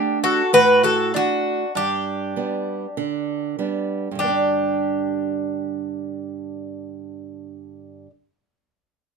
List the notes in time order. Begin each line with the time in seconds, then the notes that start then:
Already playing: A3 D4 G4 F#5
0.24 F#4 A4
0.53 A2 F#4 B4
0.83 F#4 A4
1.14 A3 D4 F#4
1.75 G2 D4 G4
2.36 G3 B3 D4
2.97 D3
3.59 G3 B3 D4
4.11 G2 D3
4.19 G3 D4 G4
4.24 B3
4.28 D4